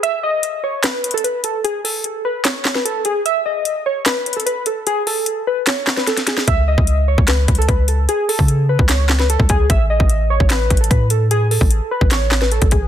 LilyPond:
<<
  \new Staff \with { instrumentName = "Synth keys" } { \time 4/4 \key cis \minor \tempo 4 = 149 e''8 dis''4 cis''8 b'8. a'16 b'8 a'8 | gis'8 a'4 b'8 cis''8. b'16 a'8 gis'8 | e''8 dis''4 cis''8 b'8. a'16 b'8 a'8 | gis'8 a'4 b'8 cis''8. b'16 a'8 gis'8 |
e''8 dis''4 cis''8 b'8. a'16 b'8 a'8 | gis'8 a'4 b'8 cis''8. b'16 a'8 gis'8 | e''8 dis''4 cis''8 b'8. a'16 b'8 a'8 | gis'8 a'4 b'8 cis''8. b'16 a'8 gis'8 | }
  \new Staff \with { instrumentName = "808-style bass" } { \clef bass \time 4/4 \key cis \minor r1 | r1 | r1 | r1 |
cis,8. cis,4 cis,8. cis,8 cis,4 | r8. cis4 cis,4. cis,8. | a,,8. a,,4 a,,8. a,,8 a,4~ | a,8. a,,8 r8 a,,4. a,,8. | }
  \new DrumStaff \with { instrumentName = "Drums" } \drummode { \time 4/4 hh4 hh4 \tuplet 3/2 { <hc hh sn>16 r16 r16 hh16 hh16 hh16 } hh8 hh8 | hh8 hho8 hh4 <hc hh sn>8 <hc sn>16 sn16 hh8 hh8 | hh4 hh4 \tuplet 3/2 { <hc hh sn>16 r16 r16 hh16 hh16 hh16 } hh8 hh8 | hh8 hho8 hh4 <hc hh sn>8 <hc sn>16 sn16 <hh sn>16 <hh sn>16 <hh sn>16 sn16 |
<hh bd>8. bd16 hh8. bd16 \tuplet 3/2 { <hc hh sn>16 r16 r16 <hh bd>16 hh16 hh16 } <hh bd>8 hh8 | hh8 hho16 bd16 hh8. bd16 <hc hh sn>8 <hc sn>16 sn16 hh16 bd16 <hh bd>8 | <hh bd>8. bd16 hh8. bd16 \tuplet 3/2 { <hc hh sn>16 r16 r16 <hh bd>16 hh16 hh16 } <hh bd>8 hh8 | hh8 hho16 bd16 hh8. bd16 <hc hh sn>8 <hc sn>16 sn16 hh16 <hh bd>16 <hh bd>8 | }
>>